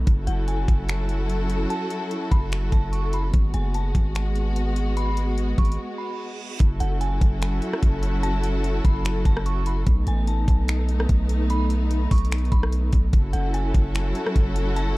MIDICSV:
0, 0, Header, 1, 6, 480
1, 0, Start_track
1, 0, Tempo, 408163
1, 83, Time_signature, 4, 2, 24, 8
1, 17612, End_track
2, 0, Start_track
2, 0, Title_t, "Synth bell"
2, 0, Program_c, 0, 98
2, 317, Note_on_c, 0, 78, 77
2, 548, Note_off_c, 0, 78, 0
2, 562, Note_on_c, 0, 80, 79
2, 1014, Note_off_c, 0, 80, 0
2, 2001, Note_on_c, 0, 81, 97
2, 2679, Note_off_c, 0, 81, 0
2, 2718, Note_on_c, 0, 83, 84
2, 3172, Note_off_c, 0, 83, 0
2, 3199, Note_on_c, 0, 81, 74
2, 3429, Note_off_c, 0, 81, 0
2, 3439, Note_on_c, 0, 85, 71
2, 3669, Note_off_c, 0, 85, 0
2, 3689, Note_on_c, 0, 83, 77
2, 3914, Note_off_c, 0, 83, 0
2, 4162, Note_on_c, 0, 80, 80
2, 4390, Note_off_c, 0, 80, 0
2, 4405, Note_on_c, 0, 81, 83
2, 4855, Note_off_c, 0, 81, 0
2, 5844, Note_on_c, 0, 83, 115
2, 6520, Note_off_c, 0, 83, 0
2, 6563, Note_on_c, 0, 85, 79
2, 7014, Note_off_c, 0, 85, 0
2, 7035, Note_on_c, 0, 83, 77
2, 7267, Note_off_c, 0, 83, 0
2, 8000, Note_on_c, 0, 78, 86
2, 8229, Note_off_c, 0, 78, 0
2, 8242, Note_on_c, 0, 80, 87
2, 8694, Note_off_c, 0, 80, 0
2, 9680, Note_on_c, 0, 81, 107
2, 10358, Note_off_c, 0, 81, 0
2, 10408, Note_on_c, 0, 83, 82
2, 10857, Note_off_c, 0, 83, 0
2, 10887, Note_on_c, 0, 81, 84
2, 11113, Note_off_c, 0, 81, 0
2, 11125, Note_on_c, 0, 85, 73
2, 11352, Note_off_c, 0, 85, 0
2, 11368, Note_on_c, 0, 83, 78
2, 11594, Note_off_c, 0, 83, 0
2, 11851, Note_on_c, 0, 80, 85
2, 12075, Note_off_c, 0, 80, 0
2, 12086, Note_on_c, 0, 81, 87
2, 12536, Note_off_c, 0, 81, 0
2, 13527, Note_on_c, 0, 83, 108
2, 14202, Note_off_c, 0, 83, 0
2, 14244, Note_on_c, 0, 85, 79
2, 14695, Note_off_c, 0, 85, 0
2, 14720, Note_on_c, 0, 83, 76
2, 14949, Note_off_c, 0, 83, 0
2, 15677, Note_on_c, 0, 78, 82
2, 15908, Note_off_c, 0, 78, 0
2, 15922, Note_on_c, 0, 80, 81
2, 16374, Note_off_c, 0, 80, 0
2, 17362, Note_on_c, 0, 81, 105
2, 17612, Note_off_c, 0, 81, 0
2, 17612, End_track
3, 0, Start_track
3, 0, Title_t, "String section"
3, 0, Program_c, 1, 48
3, 82, Note_on_c, 1, 61, 70
3, 82, Note_on_c, 1, 66, 71
3, 82, Note_on_c, 1, 69, 91
3, 83, Note_on_c, 1, 54, 79
3, 83, Note_on_c, 1, 64, 73
3, 3884, Note_off_c, 1, 54, 0
3, 3884, Note_off_c, 1, 61, 0
3, 3884, Note_off_c, 1, 64, 0
3, 3884, Note_off_c, 1, 66, 0
3, 3884, Note_off_c, 1, 69, 0
3, 3921, Note_on_c, 1, 59, 72
3, 3922, Note_on_c, 1, 56, 84
3, 3922, Note_on_c, 1, 66, 91
3, 7724, Note_off_c, 1, 56, 0
3, 7724, Note_off_c, 1, 59, 0
3, 7724, Note_off_c, 1, 66, 0
3, 7762, Note_on_c, 1, 54, 83
3, 7762, Note_on_c, 1, 61, 75
3, 7762, Note_on_c, 1, 64, 76
3, 7762, Note_on_c, 1, 66, 74
3, 7762, Note_on_c, 1, 69, 89
3, 11564, Note_off_c, 1, 54, 0
3, 11564, Note_off_c, 1, 61, 0
3, 11564, Note_off_c, 1, 64, 0
3, 11564, Note_off_c, 1, 66, 0
3, 11564, Note_off_c, 1, 69, 0
3, 11602, Note_on_c, 1, 57, 85
3, 11602, Note_on_c, 1, 59, 76
3, 11602, Note_on_c, 1, 63, 93
3, 15404, Note_off_c, 1, 57, 0
3, 15404, Note_off_c, 1, 59, 0
3, 15404, Note_off_c, 1, 63, 0
3, 15443, Note_on_c, 1, 61, 76
3, 15444, Note_on_c, 1, 54, 84
3, 15444, Note_on_c, 1, 64, 78
3, 15444, Note_on_c, 1, 66, 77
3, 15444, Note_on_c, 1, 69, 95
3, 17612, Note_off_c, 1, 54, 0
3, 17612, Note_off_c, 1, 61, 0
3, 17612, Note_off_c, 1, 64, 0
3, 17612, Note_off_c, 1, 66, 0
3, 17612, Note_off_c, 1, 69, 0
3, 17612, End_track
4, 0, Start_track
4, 0, Title_t, "808-style bass"
4, 0, Program_c, 2, 38
4, 84, Note_on_c, 2, 30, 101
4, 314, Note_off_c, 2, 30, 0
4, 322, Note_on_c, 2, 30, 106
4, 783, Note_off_c, 2, 30, 0
4, 803, Note_on_c, 2, 30, 100
4, 1956, Note_off_c, 2, 30, 0
4, 2723, Note_on_c, 2, 30, 101
4, 3184, Note_off_c, 2, 30, 0
4, 3202, Note_on_c, 2, 30, 101
4, 3894, Note_off_c, 2, 30, 0
4, 3924, Note_on_c, 2, 32, 105
4, 4154, Note_off_c, 2, 32, 0
4, 4163, Note_on_c, 2, 30, 107
4, 4624, Note_off_c, 2, 30, 0
4, 4643, Note_on_c, 2, 32, 103
4, 6516, Note_off_c, 2, 32, 0
4, 6563, Note_on_c, 2, 32, 103
4, 6793, Note_off_c, 2, 32, 0
4, 7764, Note_on_c, 2, 30, 109
4, 7994, Note_off_c, 2, 30, 0
4, 8003, Note_on_c, 2, 30, 105
4, 8464, Note_off_c, 2, 30, 0
4, 8483, Note_on_c, 2, 30, 104
4, 8944, Note_off_c, 2, 30, 0
4, 9204, Note_on_c, 2, 30, 114
4, 10356, Note_off_c, 2, 30, 0
4, 10403, Note_on_c, 2, 30, 102
4, 10864, Note_off_c, 2, 30, 0
4, 10882, Note_on_c, 2, 30, 107
4, 11574, Note_off_c, 2, 30, 0
4, 11603, Note_on_c, 2, 35, 109
4, 11834, Note_off_c, 2, 35, 0
4, 11843, Note_on_c, 2, 33, 109
4, 12304, Note_off_c, 2, 33, 0
4, 12323, Note_on_c, 2, 35, 108
4, 13014, Note_off_c, 2, 35, 0
4, 13044, Note_on_c, 2, 35, 110
4, 14196, Note_off_c, 2, 35, 0
4, 14243, Note_on_c, 2, 35, 106
4, 14704, Note_off_c, 2, 35, 0
4, 14722, Note_on_c, 2, 35, 104
4, 15183, Note_off_c, 2, 35, 0
4, 15205, Note_on_c, 2, 35, 100
4, 15434, Note_off_c, 2, 35, 0
4, 15443, Note_on_c, 2, 30, 114
4, 15674, Note_off_c, 2, 30, 0
4, 15683, Note_on_c, 2, 30, 109
4, 16144, Note_off_c, 2, 30, 0
4, 16164, Note_on_c, 2, 30, 107
4, 16624, Note_off_c, 2, 30, 0
4, 16884, Note_on_c, 2, 30, 110
4, 17612, Note_off_c, 2, 30, 0
4, 17612, End_track
5, 0, Start_track
5, 0, Title_t, "Reverse cymbal"
5, 0, Program_c, 3, 119
5, 6803, Note_on_c, 3, 60, 82
5, 7763, Note_off_c, 3, 60, 0
5, 17612, End_track
6, 0, Start_track
6, 0, Title_t, "Drums"
6, 82, Note_on_c, 9, 42, 72
6, 83, Note_on_c, 9, 36, 119
6, 200, Note_off_c, 9, 42, 0
6, 201, Note_off_c, 9, 36, 0
6, 320, Note_on_c, 9, 42, 73
6, 437, Note_off_c, 9, 42, 0
6, 562, Note_on_c, 9, 42, 63
6, 680, Note_off_c, 9, 42, 0
6, 803, Note_on_c, 9, 36, 95
6, 803, Note_on_c, 9, 42, 62
6, 921, Note_off_c, 9, 36, 0
6, 921, Note_off_c, 9, 42, 0
6, 1042, Note_on_c, 9, 42, 72
6, 1052, Note_on_c, 9, 26, 120
6, 1159, Note_off_c, 9, 42, 0
6, 1170, Note_off_c, 9, 26, 0
6, 1281, Note_on_c, 9, 42, 59
6, 1399, Note_off_c, 9, 42, 0
6, 1523, Note_on_c, 9, 42, 65
6, 1641, Note_off_c, 9, 42, 0
6, 1759, Note_on_c, 9, 42, 73
6, 1877, Note_off_c, 9, 42, 0
6, 2002, Note_on_c, 9, 42, 71
6, 2119, Note_off_c, 9, 42, 0
6, 2239, Note_on_c, 9, 42, 73
6, 2357, Note_off_c, 9, 42, 0
6, 2481, Note_on_c, 9, 42, 62
6, 2599, Note_off_c, 9, 42, 0
6, 2723, Note_on_c, 9, 36, 95
6, 2723, Note_on_c, 9, 42, 59
6, 2841, Note_off_c, 9, 36, 0
6, 2841, Note_off_c, 9, 42, 0
6, 2962, Note_on_c, 9, 42, 73
6, 2972, Note_on_c, 9, 26, 126
6, 3080, Note_off_c, 9, 42, 0
6, 3090, Note_off_c, 9, 26, 0
6, 3201, Note_on_c, 9, 42, 59
6, 3202, Note_on_c, 9, 36, 86
6, 3319, Note_off_c, 9, 36, 0
6, 3319, Note_off_c, 9, 42, 0
6, 3444, Note_on_c, 9, 42, 68
6, 3562, Note_off_c, 9, 42, 0
6, 3680, Note_on_c, 9, 42, 77
6, 3798, Note_off_c, 9, 42, 0
6, 3922, Note_on_c, 9, 42, 72
6, 3924, Note_on_c, 9, 36, 119
6, 4040, Note_off_c, 9, 42, 0
6, 4041, Note_off_c, 9, 36, 0
6, 4160, Note_on_c, 9, 42, 72
6, 4278, Note_off_c, 9, 42, 0
6, 4402, Note_on_c, 9, 42, 68
6, 4520, Note_off_c, 9, 42, 0
6, 4643, Note_on_c, 9, 36, 94
6, 4644, Note_on_c, 9, 42, 61
6, 4761, Note_off_c, 9, 36, 0
6, 4761, Note_off_c, 9, 42, 0
6, 4882, Note_on_c, 9, 42, 74
6, 4892, Note_on_c, 9, 26, 122
6, 5000, Note_off_c, 9, 42, 0
6, 5010, Note_off_c, 9, 26, 0
6, 5122, Note_on_c, 9, 42, 57
6, 5239, Note_off_c, 9, 42, 0
6, 5364, Note_on_c, 9, 42, 72
6, 5481, Note_off_c, 9, 42, 0
6, 5600, Note_on_c, 9, 42, 76
6, 5717, Note_off_c, 9, 42, 0
6, 5842, Note_on_c, 9, 42, 70
6, 5960, Note_off_c, 9, 42, 0
6, 6080, Note_on_c, 9, 42, 76
6, 6198, Note_off_c, 9, 42, 0
6, 6323, Note_on_c, 9, 42, 64
6, 6440, Note_off_c, 9, 42, 0
6, 6563, Note_on_c, 9, 36, 88
6, 6563, Note_on_c, 9, 42, 38
6, 6643, Note_off_c, 9, 42, 0
6, 6643, Note_on_c, 9, 42, 51
6, 6681, Note_off_c, 9, 36, 0
6, 6723, Note_off_c, 9, 42, 0
6, 6723, Note_on_c, 9, 42, 61
6, 6841, Note_off_c, 9, 42, 0
6, 7762, Note_on_c, 9, 42, 73
6, 7764, Note_on_c, 9, 36, 125
6, 7880, Note_off_c, 9, 42, 0
6, 7881, Note_off_c, 9, 36, 0
6, 8000, Note_on_c, 9, 42, 74
6, 8118, Note_off_c, 9, 42, 0
6, 8243, Note_on_c, 9, 42, 70
6, 8360, Note_off_c, 9, 42, 0
6, 8483, Note_on_c, 9, 36, 95
6, 8484, Note_on_c, 9, 42, 62
6, 8601, Note_off_c, 9, 36, 0
6, 8602, Note_off_c, 9, 42, 0
6, 8723, Note_on_c, 9, 42, 70
6, 8733, Note_on_c, 9, 26, 127
6, 8840, Note_off_c, 9, 42, 0
6, 8850, Note_off_c, 9, 26, 0
6, 8961, Note_on_c, 9, 42, 59
6, 9079, Note_off_c, 9, 42, 0
6, 9095, Note_on_c, 9, 37, 90
6, 9204, Note_on_c, 9, 36, 97
6, 9204, Note_on_c, 9, 42, 74
6, 9213, Note_off_c, 9, 37, 0
6, 9321, Note_off_c, 9, 42, 0
6, 9322, Note_off_c, 9, 36, 0
6, 9440, Note_on_c, 9, 42, 76
6, 9558, Note_off_c, 9, 42, 0
6, 9682, Note_on_c, 9, 42, 74
6, 9800, Note_off_c, 9, 42, 0
6, 9920, Note_on_c, 9, 42, 79
6, 10037, Note_off_c, 9, 42, 0
6, 10162, Note_on_c, 9, 42, 66
6, 10280, Note_off_c, 9, 42, 0
6, 10403, Note_on_c, 9, 36, 93
6, 10404, Note_on_c, 9, 42, 63
6, 10521, Note_off_c, 9, 36, 0
6, 10521, Note_off_c, 9, 42, 0
6, 10643, Note_on_c, 9, 42, 75
6, 10653, Note_on_c, 9, 26, 127
6, 10761, Note_off_c, 9, 42, 0
6, 10771, Note_off_c, 9, 26, 0
6, 10882, Note_on_c, 9, 36, 91
6, 10882, Note_on_c, 9, 42, 60
6, 11000, Note_off_c, 9, 36, 0
6, 11000, Note_off_c, 9, 42, 0
6, 11015, Note_on_c, 9, 37, 93
6, 11124, Note_on_c, 9, 42, 73
6, 11133, Note_off_c, 9, 37, 0
6, 11242, Note_off_c, 9, 42, 0
6, 11360, Note_on_c, 9, 42, 79
6, 11477, Note_off_c, 9, 42, 0
6, 11602, Note_on_c, 9, 42, 75
6, 11603, Note_on_c, 9, 36, 123
6, 11720, Note_off_c, 9, 42, 0
6, 11721, Note_off_c, 9, 36, 0
6, 11840, Note_on_c, 9, 42, 73
6, 11957, Note_off_c, 9, 42, 0
6, 12082, Note_on_c, 9, 42, 66
6, 12200, Note_off_c, 9, 42, 0
6, 12323, Note_on_c, 9, 36, 92
6, 12324, Note_on_c, 9, 42, 63
6, 12441, Note_off_c, 9, 36, 0
6, 12442, Note_off_c, 9, 42, 0
6, 12563, Note_on_c, 9, 42, 75
6, 12573, Note_on_c, 9, 26, 122
6, 12680, Note_off_c, 9, 42, 0
6, 12690, Note_off_c, 9, 26, 0
6, 12802, Note_on_c, 9, 42, 61
6, 12919, Note_off_c, 9, 42, 0
6, 12935, Note_on_c, 9, 37, 92
6, 13044, Note_on_c, 9, 36, 94
6, 13044, Note_on_c, 9, 42, 74
6, 13053, Note_off_c, 9, 37, 0
6, 13162, Note_off_c, 9, 36, 0
6, 13162, Note_off_c, 9, 42, 0
6, 13280, Note_on_c, 9, 42, 78
6, 13398, Note_off_c, 9, 42, 0
6, 13523, Note_on_c, 9, 42, 74
6, 13640, Note_off_c, 9, 42, 0
6, 13760, Note_on_c, 9, 42, 72
6, 13877, Note_off_c, 9, 42, 0
6, 14002, Note_on_c, 9, 42, 67
6, 14120, Note_off_c, 9, 42, 0
6, 14243, Note_on_c, 9, 36, 92
6, 14243, Note_on_c, 9, 42, 65
6, 14244, Note_on_c, 9, 46, 49
6, 14323, Note_off_c, 9, 42, 0
6, 14323, Note_on_c, 9, 42, 58
6, 14361, Note_off_c, 9, 36, 0
6, 14361, Note_off_c, 9, 46, 0
6, 14402, Note_off_c, 9, 42, 0
6, 14402, Note_on_c, 9, 42, 53
6, 14482, Note_off_c, 9, 42, 0
6, 14482, Note_on_c, 9, 42, 47
6, 14492, Note_on_c, 9, 26, 124
6, 14562, Note_off_c, 9, 42, 0
6, 14562, Note_on_c, 9, 42, 42
6, 14610, Note_off_c, 9, 26, 0
6, 14643, Note_off_c, 9, 42, 0
6, 14643, Note_on_c, 9, 42, 36
6, 14721, Note_off_c, 9, 42, 0
6, 14721, Note_on_c, 9, 42, 59
6, 14722, Note_on_c, 9, 36, 91
6, 14839, Note_off_c, 9, 36, 0
6, 14839, Note_off_c, 9, 42, 0
6, 14855, Note_on_c, 9, 37, 93
6, 14964, Note_on_c, 9, 42, 74
6, 14973, Note_off_c, 9, 37, 0
6, 15082, Note_off_c, 9, 42, 0
6, 15200, Note_on_c, 9, 42, 75
6, 15204, Note_on_c, 9, 36, 90
6, 15318, Note_off_c, 9, 42, 0
6, 15322, Note_off_c, 9, 36, 0
6, 15442, Note_on_c, 9, 42, 75
6, 15444, Note_on_c, 9, 36, 120
6, 15560, Note_off_c, 9, 42, 0
6, 15561, Note_off_c, 9, 36, 0
6, 15680, Note_on_c, 9, 42, 76
6, 15798, Note_off_c, 9, 42, 0
6, 15923, Note_on_c, 9, 42, 71
6, 16040, Note_off_c, 9, 42, 0
6, 16164, Note_on_c, 9, 36, 94
6, 16164, Note_on_c, 9, 42, 63
6, 16281, Note_off_c, 9, 36, 0
6, 16282, Note_off_c, 9, 42, 0
6, 16403, Note_on_c, 9, 42, 75
6, 16413, Note_on_c, 9, 26, 125
6, 16520, Note_off_c, 9, 42, 0
6, 16530, Note_off_c, 9, 26, 0
6, 16642, Note_on_c, 9, 42, 62
6, 16760, Note_off_c, 9, 42, 0
6, 16775, Note_on_c, 9, 37, 94
6, 16884, Note_on_c, 9, 36, 100
6, 16884, Note_on_c, 9, 42, 71
6, 16893, Note_off_c, 9, 37, 0
6, 17002, Note_off_c, 9, 36, 0
6, 17002, Note_off_c, 9, 42, 0
6, 17120, Note_on_c, 9, 42, 79
6, 17237, Note_off_c, 9, 42, 0
6, 17362, Note_on_c, 9, 42, 75
6, 17480, Note_off_c, 9, 42, 0
6, 17612, End_track
0, 0, End_of_file